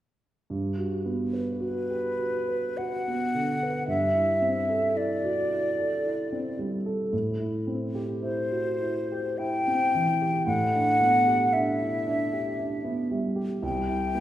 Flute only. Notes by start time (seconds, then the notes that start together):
1.60 B4
2.77 F#5
3.88 E5
4.97 D5
8.21 C5
9.38 G5
10.47 F#5
11.53 E5
13.62 G5